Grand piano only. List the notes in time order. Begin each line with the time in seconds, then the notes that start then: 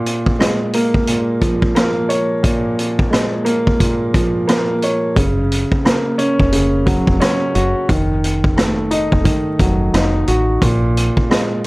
Already playing: A#2
0.39 G#3
0.74 A#3
1.08 A#2
1.41 F3
1.75 A#3
2.09 C#5
2.43 A#2
3.10 G#3
3.45 A#3
3.80 A#2
4.15 F3
4.48 A#3
4.84 C#5
5.16 C#3
5.85 A#3
6.18 C#4
6.52 C#3
6.86 F#3
7.20 C#4
7.55 F#4
7.90 D#3
8.56 A3
8.91 D#4
9.24 D#3
9.60 F#3
9.94 D#4
10.28 F#4
10.63 A#2
11.30 G#3